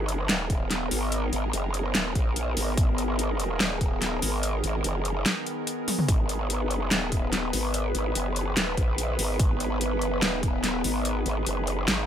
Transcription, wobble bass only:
0, 0, Header, 1, 2, 480
1, 0, Start_track
1, 0, Key_signature, 5, "minor"
1, 0, Tempo, 413793
1, 1298, Time_signature, 4, 2, 24, 8
1, 13993, End_track
2, 0, Start_track
2, 0, Title_t, "Wobble bass"
2, 0, Program_c, 0, 39
2, 0, Note_on_c, 0, 32, 101
2, 40, Note_off_c, 0, 32, 0
2, 40, Note_on_c, 0, 31, 101
2, 320, Note_off_c, 0, 31, 0
2, 338, Note_on_c, 0, 27, 97
2, 1040, Note_off_c, 0, 27, 0
2, 1057, Note_on_c, 0, 32, 97
2, 1519, Note_off_c, 0, 32, 0
2, 1537, Note_on_c, 0, 32, 95
2, 1759, Note_off_c, 0, 32, 0
2, 1777, Note_on_c, 0, 30, 96
2, 2239, Note_off_c, 0, 30, 0
2, 2257, Note_on_c, 0, 27, 99
2, 2479, Note_off_c, 0, 27, 0
2, 2498, Note_on_c, 0, 34, 94
2, 2960, Note_off_c, 0, 34, 0
2, 2977, Note_on_c, 0, 32, 101
2, 3199, Note_off_c, 0, 32, 0
2, 3218, Note_on_c, 0, 32, 101
2, 4160, Note_off_c, 0, 32, 0
2, 4178, Note_on_c, 0, 27, 99
2, 4880, Note_off_c, 0, 27, 0
2, 4898, Note_on_c, 0, 32, 101
2, 5360, Note_off_c, 0, 32, 0
2, 5378, Note_on_c, 0, 32, 99
2, 5600, Note_off_c, 0, 32, 0
2, 5618, Note_on_c, 0, 30, 96
2, 6080, Note_off_c, 0, 30, 0
2, 7058, Note_on_c, 0, 32, 96
2, 7719, Note_off_c, 0, 32, 0
2, 7719, Note_on_c, 0, 31, 96
2, 8000, Note_off_c, 0, 31, 0
2, 8018, Note_on_c, 0, 27, 93
2, 8720, Note_off_c, 0, 27, 0
2, 8737, Note_on_c, 0, 32, 98
2, 9199, Note_off_c, 0, 32, 0
2, 9218, Note_on_c, 0, 32, 98
2, 9440, Note_off_c, 0, 32, 0
2, 9457, Note_on_c, 0, 30, 95
2, 9920, Note_off_c, 0, 30, 0
2, 9938, Note_on_c, 0, 27, 102
2, 10160, Note_off_c, 0, 27, 0
2, 10178, Note_on_c, 0, 34, 97
2, 10640, Note_off_c, 0, 34, 0
2, 10658, Note_on_c, 0, 32, 102
2, 10880, Note_off_c, 0, 32, 0
2, 10898, Note_on_c, 0, 32, 97
2, 11559, Note_off_c, 0, 32, 0
2, 11559, Note_on_c, 0, 31, 97
2, 11840, Note_off_c, 0, 31, 0
2, 11858, Note_on_c, 0, 27, 98
2, 12560, Note_off_c, 0, 27, 0
2, 12578, Note_on_c, 0, 32, 95
2, 13040, Note_off_c, 0, 32, 0
2, 13058, Note_on_c, 0, 32, 98
2, 13280, Note_off_c, 0, 32, 0
2, 13298, Note_on_c, 0, 30, 94
2, 13760, Note_off_c, 0, 30, 0
2, 13778, Note_on_c, 0, 32, 97
2, 13993, Note_off_c, 0, 32, 0
2, 13993, End_track
0, 0, End_of_file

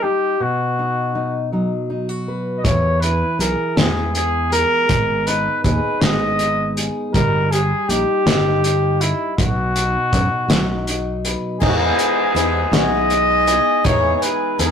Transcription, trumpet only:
0, 0, Header, 1, 2, 480
1, 0, Start_track
1, 0, Tempo, 747198
1, 254, Time_signature, 6, 3, 24, 8
1, 9450, End_track
2, 0, Start_track
2, 0, Title_t, "Trumpet"
2, 0, Program_c, 0, 56
2, 17, Note_on_c, 0, 67, 89
2, 266, Note_on_c, 0, 66, 73
2, 275, Note_off_c, 0, 67, 0
2, 983, Note_off_c, 0, 66, 0
2, 1657, Note_on_c, 0, 75, 58
2, 1697, Note_on_c, 0, 73, 83
2, 1707, Note_off_c, 0, 75, 0
2, 1931, Note_on_c, 0, 71, 80
2, 1940, Note_off_c, 0, 73, 0
2, 2177, Note_off_c, 0, 71, 0
2, 2184, Note_on_c, 0, 70, 74
2, 2423, Note_on_c, 0, 68, 75
2, 2433, Note_off_c, 0, 70, 0
2, 2663, Note_off_c, 0, 68, 0
2, 2668, Note_on_c, 0, 68, 83
2, 2890, Note_off_c, 0, 68, 0
2, 2906, Note_on_c, 0, 70, 102
2, 3385, Note_on_c, 0, 71, 83
2, 3394, Note_off_c, 0, 70, 0
2, 3616, Note_off_c, 0, 71, 0
2, 3620, Note_on_c, 0, 71, 80
2, 3864, Note_on_c, 0, 75, 98
2, 3873, Note_off_c, 0, 71, 0
2, 4406, Note_off_c, 0, 75, 0
2, 4586, Note_on_c, 0, 70, 89
2, 4826, Note_on_c, 0, 68, 84
2, 4835, Note_off_c, 0, 70, 0
2, 5064, Note_on_c, 0, 67, 89
2, 5074, Note_off_c, 0, 68, 0
2, 5788, Note_on_c, 0, 64, 80
2, 5798, Note_off_c, 0, 67, 0
2, 6015, Note_off_c, 0, 64, 0
2, 6019, Note_on_c, 0, 66, 82
2, 7195, Note_off_c, 0, 66, 0
2, 7451, Note_on_c, 0, 68, 78
2, 7500, Note_on_c, 0, 66, 66
2, 7510, Note_off_c, 0, 68, 0
2, 7548, Note_on_c, 0, 68, 86
2, 7558, Note_off_c, 0, 66, 0
2, 8178, Note_off_c, 0, 68, 0
2, 8187, Note_on_c, 0, 75, 103
2, 8898, Note_on_c, 0, 73, 86
2, 8908, Note_off_c, 0, 75, 0
2, 9088, Note_off_c, 0, 73, 0
2, 9088, Note_on_c, 0, 73, 64
2, 9135, Note_on_c, 0, 71, 82
2, 9145, Note_off_c, 0, 73, 0
2, 9378, Note_on_c, 0, 68, 70
2, 9388, Note_off_c, 0, 71, 0
2, 9419, Note_on_c, 0, 70, 59
2, 9429, Note_off_c, 0, 68, 0
2, 9450, Note_off_c, 0, 70, 0
2, 9450, End_track
0, 0, End_of_file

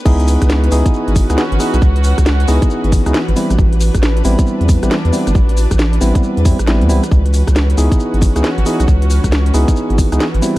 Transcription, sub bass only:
0, 0, Header, 1, 2, 480
1, 0, Start_track
1, 0, Tempo, 441176
1, 61, Time_signature, 4, 2, 24, 8
1, 11515, End_track
2, 0, Start_track
2, 0, Title_t, "Sub bass"
2, 0, Program_c, 0, 38
2, 60, Note_on_c, 0, 37, 104
2, 405, Note_off_c, 0, 37, 0
2, 452, Note_on_c, 0, 37, 90
2, 753, Note_off_c, 0, 37, 0
2, 779, Note_on_c, 0, 37, 87
2, 902, Note_off_c, 0, 37, 0
2, 1170, Note_on_c, 0, 32, 89
2, 1352, Note_off_c, 0, 32, 0
2, 1410, Note_on_c, 0, 37, 86
2, 1482, Note_off_c, 0, 37, 0
2, 1650, Note_on_c, 0, 32, 92
2, 1722, Note_off_c, 0, 32, 0
2, 1889, Note_on_c, 0, 35, 86
2, 1962, Note_off_c, 0, 35, 0
2, 1979, Note_on_c, 0, 37, 102
2, 2324, Note_off_c, 0, 37, 0
2, 2371, Note_on_c, 0, 37, 88
2, 2672, Note_off_c, 0, 37, 0
2, 2700, Note_on_c, 0, 37, 88
2, 2823, Note_off_c, 0, 37, 0
2, 3089, Note_on_c, 0, 32, 88
2, 3272, Note_off_c, 0, 32, 0
2, 3331, Note_on_c, 0, 37, 83
2, 3403, Note_off_c, 0, 37, 0
2, 3572, Note_on_c, 0, 32, 89
2, 3643, Note_off_c, 0, 32, 0
2, 3810, Note_on_c, 0, 33, 84
2, 3882, Note_off_c, 0, 33, 0
2, 3900, Note_on_c, 0, 33, 103
2, 4245, Note_off_c, 0, 33, 0
2, 4292, Note_on_c, 0, 33, 88
2, 4593, Note_off_c, 0, 33, 0
2, 4621, Note_on_c, 0, 33, 87
2, 4743, Note_off_c, 0, 33, 0
2, 5012, Note_on_c, 0, 40, 89
2, 5193, Note_off_c, 0, 40, 0
2, 5251, Note_on_c, 0, 33, 84
2, 5323, Note_off_c, 0, 33, 0
2, 5494, Note_on_c, 0, 40, 94
2, 5564, Note_off_c, 0, 40, 0
2, 5734, Note_on_c, 0, 31, 85
2, 5804, Note_off_c, 0, 31, 0
2, 5821, Note_on_c, 0, 33, 104
2, 6165, Note_off_c, 0, 33, 0
2, 6213, Note_on_c, 0, 33, 89
2, 6513, Note_off_c, 0, 33, 0
2, 6542, Note_on_c, 0, 33, 90
2, 6664, Note_off_c, 0, 33, 0
2, 6933, Note_on_c, 0, 40, 87
2, 7113, Note_off_c, 0, 40, 0
2, 7174, Note_on_c, 0, 33, 86
2, 7413, Note_on_c, 0, 40, 104
2, 7429, Note_off_c, 0, 33, 0
2, 7501, Note_on_c, 0, 36, 87
2, 7518, Note_off_c, 0, 40, 0
2, 7623, Note_off_c, 0, 36, 0
2, 7740, Note_on_c, 0, 37, 100
2, 8085, Note_off_c, 0, 37, 0
2, 8132, Note_on_c, 0, 37, 89
2, 8433, Note_off_c, 0, 37, 0
2, 8460, Note_on_c, 0, 37, 88
2, 8583, Note_off_c, 0, 37, 0
2, 8852, Note_on_c, 0, 32, 88
2, 9033, Note_off_c, 0, 32, 0
2, 9093, Note_on_c, 0, 37, 86
2, 9164, Note_off_c, 0, 37, 0
2, 9331, Note_on_c, 0, 32, 90
2, 9403, Note_off_c, 0, 32, 0
2, 9573, Note_on_c, 0, 35, 84
2, 9643, Note_off_c, 0, 35, 0
2, 9660, Note_on_c, 0, 37, 102
2, 10005, Note_off_c, 0, 37, 0
2, 10052, Note_on_c, 0, 37, 89
2, 10353, Note_off_c, 0, 37, 0
2, 10379, Note_on_c, 0, 37, 89
2, 10502, Note_off_c, 0, 37, 0
2, 10770, Note_on_c, 0, 32, 89
2, 10952, Note_off_c, 0, 32, 0
2, 11010, Note_on_c, 0, 37, 87
2, 11082, Note_off_c, 0, 37, 0
2, 11251, Note_on_c, 0, 32, 93
2, 11323, Note_off_c, 0, 32, 0
2, 11515, End_track
0, 0, End_of_file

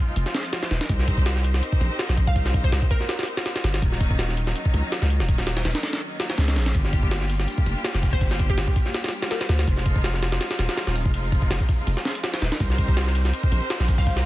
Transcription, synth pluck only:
0, 0, Header, 1, 2, 480
1, 0, Start_track
1, 0, Tempo, 365854
1, 1176, Time_signature, 4, 2, 24, 8
1, 18703, End_track
2, 0, Start_track
2, 0, Title_t, "Synth pluck"
2, 0, Program_c, 0, 84
2, 2982, Note_on_c, 0, 77, 92
2, 3268, Note_off_c, 0, 77, 0
2, 3464, Note_on_c, 0, 72, 90
2, 3749, Note_off_c, 0, 72, 0
2, 3812, Note_on_c, 0, 70, 91
2, 4294, Note_off_c, 0, 70, 0
2, 10663, Note_on_c, 0, 72, 92
2, 10948, Note_off_c, 0, 72, 0
2, 11148, Note_on_c, 0, 67, 97
2, 11431, Note_off_c, 0, 67, 0
2, 12215, Note_on_c, 0, 70, 89
2, 12319, Note_off_c, 0, 70, 0
2, 12341, Note_on_c, 0, 72, 94
2, 12746, Note_off_c, 0, 72, 0
2, 18344, Note_on_c, 0, 77, 89
2, 18629, Note_off_c, 0, 77, 0
2, 18703, End_track
0, 0, End_of_file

